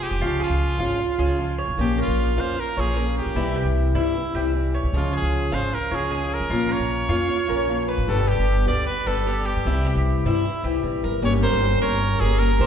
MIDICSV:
0, 0, Header, 1, 6, 480
1, 0, Start_track
1, 0, Tempo, 393701
1, 249, Time_signature, 4, 2, 24, 8
1, 15442, End_track
2, 0, Start_track
2, 0, Title_t, "Trumpet"
2, 0, Program_c, 0, 56
2, 34, Note_on_c, 0, 67, 86
2, 501, Note_off_c, 0, 67, 0
2, 527, Note_on_c, 0, 65, 82
2, 1899, Note_off_c, 0, 65, 0
2, 2198, Note_on_c, 0, 67, 77
2, 2408, Note_off_c, 0, 67, 0
2, 2458, Note_on_c, 0, 65, 80
2, 2927, Note_on_c, 0, 72, 84
2, 2945, Note_off_c, 0, 65, 0
2, 3167, Note_on_c, 0, 70, 88
2, 3186, Note_off_c, 0, 72, 0
2, 3409, Note_on_c, 0, 68, 93
2, 3427, Note_off_c, 0, 70, 0
2, 3864, Note_off_c, 0, 68, 0
2, 3871, Note_on_c, 0, 67, 70
2, 4531, Note_off_c, 0, 67, 0
2, 6063, Note_on_c, 0, 65, 73
2, 6261, Note_off_c, 0, 65, 0
2, 6294, Note_on_c, 0, 68, 84
2, 6755, Note_on_c, 0, 72, 81
2, 6773, Note_off_c, 0, 68, 0
2, 7002, Note_on_c, 0, 70, 78
2, 7020, Note_off_c, 0, 72, 0
2, 7250, Note_on_c, 0, 68, 81
2, 7268, Note_off_c, 0, 70, 0
2, 7726, Note_on_c, 0, 70, 84
2, 7744, Note_off_c, 0, 68, 0
2, 8190, Note_on_c, 0, 73, 98
2, 8208, Note_off_c, 0, 70, 0
2, 9619, Note_off_c, 0, 73, 0
2, 9854, Note_on_c, 0, 69, 91
2, 10097, Note_on_c, 0, 67, 87
2, 10115, Note_off_c, 0, 69, 0
2, 10572, Note_off_c, 0, 67, 0
2, 10579, Note_on_c, 0, 74, 92
2, 10797, Note_off_c, 0, 74, 0
2, 10809, Note_on_c, 0, 71, 91
2, 11058, Note_on_c, 0, 69, 97
2, 11076, Note_off_c, 0, 71, 0
2, 11530, Note_on_c, 0, 67, 82
2, 11548, Note_off_c, 0, 69, 0
2, 12249, Note_off_c, 0, 67, 0
2, 13713, Note_on_c, 0, 73, 95
2, 13815, Note_off_c, 0, 73, 0
2, 13940, Note_on_c, 0, 72, 111
2, 14380, Note_off_c, 0, 72, 0
2, 14404, Note_on_c, 0, 70, 105
2, 14874, Note_on_c, 0, 68, 93
2, 14892, Note_off_c, 0, 70, 0
2, 15102, Note_on_c, 0, 70, 95
2, 15120, Note_off_c, 0, 68, 0
2, 15442, Note_off_c, 0, 70, 0
2, 15442, End_track
3, 0, Start_track
3, 0, Title_t, "Cuban tres"
3, 0, Program_c, 1, 25
3, 0, Note_on_c, 1, 68, 62
3, 240, Note_off_c, 1, 68, 0
3, 260, Note_on_c, 1, 65, 64
3, 485, Note_on_c, 1, 68, 58
3, 488, Note_off_c, 1, 65, 0
3, 953, Note_off_c, 1, 68, 0
3, 969, Note_on_c, 1, 65, 70
3, 1435, Note_off_c, 1, 65, 0
3, 1450, Note_on_c, 1, 68, 59
3, 1915, Note_off_c, 1, 68, 0
3, 1931, Note_on_c, 1, 73, 64
3, 2396, Note_off_c, 1, 73, 0
3, 2413, Note_on_c, 1, 70, 62
3, 2877, Note_off_c, 1, 70, 0
3, 2899, Note_on_c, 1, 77, 67
3, 3360, Note_off_c, 1, 77, 0
3, 3379, Note_on_c, 1, 73, 61
3, 3607, Note_off_c, 1, 73, 0
3, 3617, Note_on_c, 1, 70, 57
3, 4078, Note_off_c, 1, 70, 0
3, 4098, Note_on_c, 1, 64, 61
3, 4326, Note_off_c, 1, 64, 0
3, 4336, Note_on_c, 1, 67, 61
3, 4798, Note_off_c, 1, 67, 0
3, 4816, Note_on_c, 1, 64, 72
3, 5278, Note_off_c, 1, 64, 0
3, 5301, Note_on_c, 1, 67, 60
3, 5760, Note_off_c, 1, 67, 0
3, 5783, Note_on_c, 1, 73, 61
3, 6241, Note_off_c, 1, 73, 0
3, 6253, Note_on_c, 1, 68, 64
3, 6716, Note_off_c, 1, 68, 0
3, 6732, Note_on_c, 1, 77, 68
3, 7196, Note_off_c, 1, 77, 0
3, 7209, Note_on_c, 1, 73, 58
3, 7441, Note_off_c, 1, 73, 0
3, 7449, Note_on_c, 1, 68, 59
3, 7914, Note_off_c, 1, 68, 0
3, 7925, Note_on_c, 1, 65, 59
3, 8155, Note_on_c, 1, 70, 64
3, 8159, Note_off_c, 1, 65, 0
3, 8627, Note_off_c, 1, 70, 0
3, 8644, Note_on_c, 1, 65, 73
3, 9111, Note_off_c, 1, 65, 0
3, 9133, Note_on_c, 1, 70, 55
3, 9596, Note_off_c, 1, 70, 0
3, 9609, Note_on_c, 1, 71, 68
3, 10074, Note_off_c, 1, 71, 0
3, 10087, Note_on_c, 1, 67, 65
3, 10553, Note_off_c, 1, 67, 0
3, 10579, Note_on_c, 1, 74, 64
3, 11039, Note_off_c, 1, 74, 0
3, 11057, Note_on_c, 1, 71, 55
3, 11285, Note_off_c, 1, 71, 0
3, 11301, Note_on_c, 1, 67, 60
3, 11760, Note_off_c, 1, 67, 0
3, 11782, Note_on_c, 1, 64, 58
3, 12008, Note_off_c, 1, 64, 0
3, 12025, Note_on_c, 1, 67, 66
3, 12482, Note_off_c, 1, 67, 0
3, 12508, Note_on_c, 1, 64, 72
3, 12964, Note_off_c, 1, 64, 0
3, 12974, Note_on_c, 1, 67, 60
3, 13436, Note_off_c, 1, 67, 0
3, 13457, Note_on_c, 1, 70, 62
3, 13685, Note_off_c, 1, 70, 0
3, 13939, Note_on_c, 1, 70, 72
3, 14398, Note_off_c, 1, 70, 0
3, 14411, Note_on_c, 1, 61, 80
3, 14874, Note_off_c, 1, 61, 0
3, 14888, Note_on_c, 1, 70, 63
3, 15351, Note_off_c, 1, 70, 0
3, 15372, Note_on_c, 1, 72, 78
3, 15442, Note_off_c, 1, 72, 0
3, 15442, End_track
4, 0, Start_track
4, 0, Title_t, "Steel-string acoustic guitar"
4, 0, Program_c, 2, 25
4, 0, Note_on_c, 2, 53, 43
4, 0, Note_on_c, 2, 56, 44
4, 0, Note_on_c, 2, 60, 46
4, 0, Note_on_c, 2, 65, 48
4, 239, Note_off_c, 2, 53, 0
4, 244, Note_off_c, 2, 56, 0
4, 247, Note_off_c, 2, 60, 0
4, 252, Note_off_c, 2, 65, 0
4, 252, Note_on_c, 2, 49, 60
4, 256, Note_on_c, 2, 53, 70
4, 261, Note_on_c, 2, 56, 72
4, 269, Note_on_c, 2, 61, 76
4, 273, Note_on_c, 2, 65, 64
4, 960, Note_off_c, 2, 65, 0
4, 961, Note_off_c, 2, 49, 0
4, 965, Note_off_c, 2, 56, 0
4, 965, Note_on_c, 2, 65, 65
4, 969, Note_off_c, 2, 61, 0
4, 974, Note_on_c, 2, 61, 61
4, 980, Note_on_c, 2, 56, 54
4, 983, Note_off_c, 2, 53, 0
4, 987, Note_on_c, 2, 53, 53
4, 1195, Note_off_c, 2, 53, 0
4, 1197, Note_off_c, 2, 56, 0
4, 1198, Note_off_c, 2, 65, 0
4, 1202, Note_off_c, 2, 61, 0
4, 1442, Note_on_c, 2, 65, 62
4, 1450, Note_on_c, 2, 61, 52
4, 1464, Note_on_c, 2, 56, 52
4, 1470, Note_on_c, 2, 53, 46
4, 1674, Note_off_c, 2, 53, 0
4, 1675, Note_off_c, 2, 56, 0
4, 1676, Note_off_c, 2, 65, 0
4, 1680, Note_off_c, 2, 61, 0
4, 1688, Note_on_c, 2, 53, 46
4, 1690, Note_on_c, 2, 56, 43
4, 1704, Note_on_c, 2, 61, 44
4, 1705, Note_on_c, 2, 65, 45
4, 2153, Note_off_c, 2, 53, 0
4, 2160, Note_off_c, 2, 56, 0
4, 2167, Note_off_c, 2, 61, 0
4, 2167, Note_on_c, 2, 53, 69
4, 2168, Note_off_c, 2, 65, 0
4, 2177, Note_on_c, 2, 58, 69
4, 2181, Note_on_c, 2, 61, 69
4, 2187, Note_on_c, 2, 65, 73
4, 2873, Note_off_c, 2, 65, 0
4, 2879, Note_off_c, 2, 53, 0
4, 2879, Note_off_c, 2, 61, 0
4, 2883, Note_off_c, 2, 58, 0
4, 2888, Note_on_c, 2, 65, 67
4, 2894, Note_on_c, 2, 61, 57
4, 2910, Note_on_c, 2, 58, 48
4, 3117, Note_off_c, 2, 58, 0
4, 3119, Note_off_c, 2, 65, 0
4, 3122, Note_off_c, 2, 61, 0
4, 3382, Note_on_c, 2, 65, 58
4, 3393, Note_on_c, 2, 61, 55
4, 3401, Note_on_c, 2, 58, 49
4, 3606, Note_off_c, 2, 65, 0
4, 3611, Note_off_c, 2, 58, 0
4, 3611, Note_off_c, 2, 61, 0
4, 3614, Note_on_c, 2, 53, 41
4, 3625, Note_on_c, 2, 58, 47
4, 3626, Note_on_c, 2, 61, 47
4, 3639, Note_on_c, 2, 65, 46
4, 4082, Note_off_c, 2, 53, 0
4, 4087, Note_off_c, 2, 58, 0
4, 4088, Note_off_c, 2, 61, 0
4, 4094, Note_off_c, 2, 65, 0
4, 4095, Note_on_c, 2, 48, 74
4, 4101, Note_on_c, 2, 52, 71
4, 4108, Note_on_c, 2, 55, 73
4, 4111, Note_on_c, 2, 60, 81
4, 4119, Note_on_c, 2, 64, 74
4, 4794, Note_off_c, 2, 64, 0
4, 4802, Note_off_c, 2, 48, 0
4, 4805, Note_off_c, 2, 52, 0
4, 4809, Note_off_c, 2, 55, 0
4, 4809, Note_on_c, 2, 64, 68
4, 4810, Note_off_c, 2, 60, 0
4, 4823, Note_on_c, 2, 60, 62
4, 4825, Note_on_c, 2, 55, 55
4, 4836, Note_on_c, 2, 52, 57
4, 5039, Note_off_c, 2, 64, 0
4, 5046, Note_off_c, 2, 60, 0
4, 5047, Note_off_c, 2, 55, 0
4, 5049, Note_off_c, 2, 52, 0
4, 5295, Note_on_c, 2, 64, 58
4, 5306, Note_on_c, 2, 60, 53
4, 5310, Note_on_c, 2, 55, 46
4, 5317, Note_on_c, 2, 52, 47
4, 5516, Note_off_c, 2, 52, 0
4, 5522, Note_off_c, 2, 64, 0
4, 5527, Note_off_c, 2, 60, 0
4, 5530, Note_off_c, 2, 55, 0
4, 5530, Note_on_c, 2, 52, 44
4, 5542, Note_on_c, 2, 55, 45
4, 5545, Note_on_c, 2, 60, 51
4, 5554, Note_on_c, 2, 64, 45
4, 6000, Note_off_c, 2, 52, 0
4, 6006, Note_off_c, 2, 55, 0
4, 6007, Note_off_c, 2, 60, 0
4, 6011, Note_off_c, 2, 64, 0
4, 6014, Note_on_c, 2, 49, 61
4, 6023, Note_on_c, 2, 53, 75
4, 6025, Note_on_c, 2, 56, 73
4, 6031, Note_on_c, 2, 61, 63
4, 6036, Note_on_c, 2, 65, 69
4, 6721, Note_off_c, 2, 49, 0
4, 6722, Note_off_c, 2, 65, 0
4, 6727, Note_off_c, 2, 56, 0
4, 6727, Note_on_c, 2, 65, 62
4, 6731, Note_off_c, 2, 61, 0
4, 6736, Note_on_c, 2, 61, 54
4, 6739, Note_on_c, 2, 56, 62
4, 6748, Note_off_c, 2, 53, 0
4, 6753, Note_on_c, 2, 53, 53
4, 6954, Note_off_c, 2, 53, 0
4, 6958, Note_off_c, 2, 65, 0
4, 6960, Note_off_c, 2, 56, 0
4, 6962, Note_off_c, 2, 61, 0
4, 7208, Note_on_c, 2, 65, 58
4, 7218, Note_on_c, 2, 61, 57
4, 7224, Note_on_c, 2, 56, 50
4, 7233, Note_on_c, 2, 53, 45
4, 7424, Note_off_c, 2, 53, 0
4, 7437, Note_off_c, 2, 56, 0
4, 7438, Note_off_c, 2, 65, 0
4, 7438, Note_on_c, 2, 53, 43
4, 7443, Note_off_c, 2, 61, 0
4, 7452, Note_on_c, 2, 56, 45
4, 7458, Note_on_c, 2, 61, 50
4, 7461, Note_on_c, 2, 65, 51
4, 7913, Note_off_c, 2, 53, 0
4, 7920, Note_off_c, 2, 56, 0
4, 7923, Note_off_c, 2, 61, 0
4, 7925, Note_off_c, 2, 65, 0
4, 7929, Note_on_c, 2, 53, 68
4, 7937, Note_on_c, 2, 58, 73
4, 7946, Note_on_c, 2, 61, 72
4, 7950, Note_on_c, 2, 65, 77
4, 8628, Note_off_c, 2, 65, 0
4, 8639, Note_off_c, 2, 53, 0
4, 8641, Note_off_c, 2, 61, 0
4, 8643, Note_off_c, 2, 58, 0
4, 8643, Note_on_c, 2, 65, 72
4, 8655, Note_on_c, 2, 61, 55
4, 8663, Note_on_c, 2, 58, 54
4, 8867, Note_off_c, 2, 58, 0
4, 8872, Note_off_c, 2, 61, 0
4, 8873, Note_off_c, 2, 65, 0
4, 9115, Note_on_c, 2, 65, 56
4, 9131, Note_on_c, 2, 61, 50
4, 9136, Note_on_c, 2, 58, 41
4, 9352, Note_off_c, 2, 65, 0
4, 9357, Note_off_c, 2, 58, 0
4, 9360, Note_off_c, 2, 61, 0
4, 9363, Note_on_c, 2, 53, 48
4, 9371, Note_on_c, 2, 58, 47
4, 9376, Note_on_c, 2, 61, 48
4, 9384, Note_on_c, 2, 65, 49
4, 9836, Note_off_c, 2, 53, 0
4, 9840, Note_off_c, 2, 58, 0
4, 9842, Note_off_c, 2, 61, 0
4, 9846, Note_off_c, 2, 65, 0
4, 9847, Note_on_c, 2, 47, 66
4, 9853, Note_on_c, 2, 50, 68
4, 9858, Note_on_c, 2, 55, 77
4, 9859, Note_on_c, 2, 59, 70
4, 9866, Note_on_c, 2, 67, 77
4, 10558, Note_off_c, 2, 47, 0
4, 10558, Note_off_c, 2, 59, 0
4, 10559, Note_off_c, 2, 67, 0
4, 10561, Note_off_c, 2, 50, 0
4, 10563, Note_on_c, 2, 67, 68
4, 10569, Note_off_c, 2, 55, 0
4, 10573, Note_on_c, 2, 59, 66
4, 10574, Note_on_c, 2, 55, 64
4, 10586, Note_on_c, 2, 50, 55
4, 10793, Note_off_c, 2, 55, 0
4, 10794, Note_off_c, 2, 50, 0
4, 10796, Note_off_c, 2, 67, 0
4, 10797, Note_off_c, 2, 59, 0
4, 11042, Note_on_c, 2, 67, 53
4, 11048, Note_on_c, 2, 59, 51
4, 11056, Note_on_c, 2, 55, 54
4, 11061, Note_on_c, 2, 50, 51
4, 11272, Note_off_c, 2, 50, 0
4, 11275, Note_off_c, 2, 67, 0
4, 11278, Note_off_c, 2, 59, 0
4, 11282, Note_off_c, 2, 55, 0
4, 11287, Note_on_c, 2, 50, 42
4, 11295, Note_on_c, 2, 55, 44
4, 11300, Note_on_c, 2, 59, 48
4, 11303, Note_on_c, 2, 67, 44
4, 11758, Note_off_c, 2, 50, 0
4, 11762, Note_off_c, 2, 55, 0
4, 11764, Note_off_c, 2, 59, 0
4, 11766, Note_off_c, 2, 67, 0
4, 11772, Note_on_c, 2, 48, 72
4, 11781, Note_on_c, 2, 52, 65
4, 11787, Note_on_c, 2, 55, 69
4, 11790, Note_on_c, 2, 60, 75
4, 11799, Note_on_c, 2, 64, 74
4, 12480, Note_off_c, 2, 48, 0
4, 12485, Note_off_c, 2, 52, 0
4, 12485, Note_off_c, 2, 64, 0
4, 12488, Note_off_c, 2, 55, 0
4, 12489, Note_off_c, 2, 60, 0
4, 12499, Note_on_c, 2, 64, 70
4, 12505, Note_on_c, 2, 60, 60
4, 12513, Note_on_c, 2, 55, 58
4, 12518, Note_on_c, 2, 52, 56
4, 12718, Note_off_c, 2, 52, 0
4, 12722, Note_off_c, 2, 55, 0
4, 12722, Note_off_c, 2, 60, 0
4, 12724, Note_off_c, 2, 64, 0
4, 12963, Note_on_c, 2, 64, 56
4, 12972, Note_on_c, 2, 60, 58
4, 12979, Note_on_c, 2, 55, 45
4, 12986, Note_on_c, 2, 52, 47
4, 13185, Note_off_c, 2, 52, 0
4, 13188, Note_off_c, 2, 55, 0
4, 13195, Note_off_c, 2, 64, 0
4, 13197, Note_off_c, 2, 60, 0
4, 13200, Note_on_c, 2, 52, 39
4, 13203, Note_on_c, 2, 55, 44
4, 13212, Note_on_c, 2, 60, 44
4, 13218, Note_on_c, 2, 64, 44
4, 13665, Note_off_c, 2, 55, 0
4, 13673, Note_off_c, 2, 52, 0
4, 13680, Note_off_c, 2, 60, 0
4, 13680, Note_on_c, 2, 55, 69
4, 13682, Note_off_c, 2, 64, 0
4, 13683, Note_on_c, 2, 58, 82
4, 13694, Note_on_c, 2, 61, 77
4, 13701, Note_on_c, 2, 67, 75
4, 14131, Note_off_c, 2, 55, 0
4, 14139, Note_off_c, 2, 58, 0
4, 14145, Note_on_c, 2, 55, 46
4, 14149, Note_off_c, 2, 61, 0
4, 14154, Note_on_c, 2, 58, 49
4, 14157, Note_off_c, 2, 67, 0
4, 14164, Note_on_c, 2, 61, 43
4, 14172, Note_on_c, 2, 67, 49
4, 14616, Note_off_c, 2, 55, 0
4, 14620, Note_off_c, 2, 58, 0
4, 14621, Note_off_c, 2, 61, 0
4, 14628, Note_off_c, 2, 67, 0
4, 14872, Note_on_c, 2, 67, 65
4, 14880, Note_on_c, 2, 61, 57
4, 14894, Note_on_c, 2, 58, 48
4, 15107, Note_off_c, 2, 58, 0
4, 15109, Note_off_c, 2, 67, 0
4, 15113, Note_off_c, 2, 61, 0
4, 15117, Note_on_c, 2, 55, 48
4, 15122, Note_on_c, 2, 58, 50
4, 15134, Note_on_c, 2, 61, 49
4, 15139, Note_on_c, 2, 67, 46
4, 15338, Note_off_c, 2, 67, 0
4, 15351, Note_off_c, 2, 55, 0
4, 15352, Note_on_c, 2, 67, 63
4, 15353, Note_off_c, 2, 58, 0
4, 15355, Note_off_c, 2, 61, 0
4, 15369, Note_on_c, 2, 61, 52
4, 15377, Note_on_c, 2, 58, 52
4, 15442, Note_off_c, 2, 58, 0
4, 15442, Note_off_c, 2, 61, 0
4, 15442, Note_off_c, 2, 67, 0
4, 15442, End_track
5, 0, Start_track
5, 0, Title_t, "Upright bass"
5, 0, Program_c, 3, 32
5, 128, Note_on_c, 3, 29, 64
5, 236, Note_off_c, 3, 29, 0
5, 244, Note_on_c, 3, 37, 84
5, 588, Note_off_c, 3, 37, 0
5, 604, Note_on_c, 3, 37, 78
5, 949, Note_off_c, 3, 37, 0
5, 961, Note_on_c, 3, 32, 71
5, 1193, Note_off_c, 3, 32, 0
5, 1441, Note_on_c, 3, 37, 77
5, 2015, Note_off_c, 3, 37, 0
5, 2046, Note_on_c, 3, 35, 71
5, 2157, Note_off_c, 3, 35, 0
5, 2165, Note_on_c, 3, 34, 85
5, 2509, Note_off_c, 3, 34, 0
5, 2525, Note_on_c, 3, 34, 78
5, 2869, Note_off_c, 3, 34, 0
5, 2887, Note_on_c, 3, 41, 76
5, 3116, Note_off_c, 3, 41, 0
5, 3374, Note_on_c, 3, 34, 75
5, 3942, Note_off_c, 3, 34, 0
5, 3971, Note_on_c, 3, 34, 64
5, 4076, Note_off_c, 3, 34, 0
5, 4084, Note_on_c, 3, 36, 83
5, 4428, Note_off_c, 3, 36, 0
5, 4439, Note_on_c, 3, 36, 69
5, 4786, Note_off_c, 3, 36, 0
5, 4800, Note_on_c, 3, 43, 70
5, 5032, Note_off_c, 3, 43, 0
5, 5289, Note_on_c, 3, 36, 68
5, 5858, Note_off_c, 3, 36, 0
5, 5888, Note_on_c, 3, 36, 75
5, 6002, Note_off_c, 3, 36, 0
5, 6007, Note_on_c, 3, 37, 82
5, 6350, Note_off_c, 3, 37, 0
5, 6364, Note_on_c, 3, 37, 71
5, 6708, Note_off_c, 3, 37, 0
5, 6723, Note_on_c, 3, 32, 74
5, 6954, Note_off_c, 3, 32, 0
5, 7205, Note_on_c, 3, 37, 72
5, 7776, Note_off_c, 3, 37, 0
5, 7808, Note_on_c, 3, 41, 75
5, 7911, Note_off_c, 3, 41, 0
5, 7918, Note_on_c, 3, 34, 81
5, 8265, Note_off_c, 3, 34, 0
5, 8272, Note_on_c, 3, 34, 73
5, 8622, Note_off_c, 3, 34, 0
5, 8635, Note_on_c, 3, 41, 72
5, 8869, Note_off_c, 3, 41, 0
5, 9127, Note_on_c, 3, 34, 71
5, 9697, Note_off_c, 3, 34, 0
5, 9720, Note_on_c, 3, 32, 70
5, 9838, Note_off_c, 3, 32, 0
5, 9845, Note_on_c, 3, 31, 82
5, 10188, Note_off_c, 3, 31, 0
5, 10216, Note_on_c, 3, 31, 75
5, 10554, Note_off_c, 3, 31, 0
5, 10572, Note_on_c, 3, 38, 73
5, 10798, Note_off_c, 3, 38, 0
5, 11054, Note_on_c, 3, 31, 75
5, 11621, Note_off_c, 3, 31, 0
5, 11654, Note_on_c, 3, 43, 74
5, 11765, Note_off_c, 3, 43, 0
5, 11770, Note_on_c, 3, 36, 89
5, 12111, Note_off_c, 3, 36, 0
5, 12135, Note_on_c, 3, 36, 72
5, 12474, Note_off_c, 3, 36, 0
5, 12495, Note_on_c, 3, 43, 72
5, 12719, Note_off_c, 3, 43, 0
5, 12966, Note_on_c, 3, 36, 72
5, 13183, Note_off_c, 3, 36, 0
5, 13205, Note_on_c, 3, 34, 68
5, 13422, Note_off_c, 3, 34, 0
5, 13455, Note_on_c, 3, 31, 75
5, 13668, Note_off_c, 3, 31, 0
5, 13683, Note_on_c, 3, 31, 95
5, 14026, Note_off_c, 3, 31, 0
5, 14045, Note_on_c, 3, 31, 93
5, 14388, Note_off_c, 3, 31, 0
5, 14404, Note_on_c, 3, 31, 80
5, 14860, Note_off_c, 3, 31, 0
5, 14877, Note_on_c, 3, 31, 78
5, 15336, Note_off_c, 3, 31, 0
5, 15352, Note_on_c, 3, 34, 84
5, 15442, Note_off_c, 3, 34, 0
5, 15442, End_track
6, 0, Start_track
6, 0, Title_t, "Muted steel-string acoustic guitar strokes"
6, 1205, Note_on_c, 9, 29, 53
6, 1327, Note_off_c, 9, 29, 0
6, 3130, Note_on_c, 9, 29, 46
6, 3252, Note_off_c, 9, 29, 0
6, 5063, Note_on_c, 9, 29, 53
6, 5185, Note_off_c, 9, 29, 0
6, 6969, Note_on_c, 9, 29, 54
6, 7091, Note_off_c, 9, 29, 0
6, 8875, Note_on_c, 9, 29, 49
6, 8997, Note_off_c, 9, 29, 0
6, 10807, Note_on_c, 9, 29, 51
6, 10929, Note_off_c, 9, 29, 0
6, 12729, Note_on_c, 9, 29, 53
6, 12851, Note_off_c, 9, 29, 0
6, 14631, Note_on_c, 9, 29, 61
6, 14752, Note_off_c, 9, 29, 0
6, 15442, End_track
0, 0, End_of_file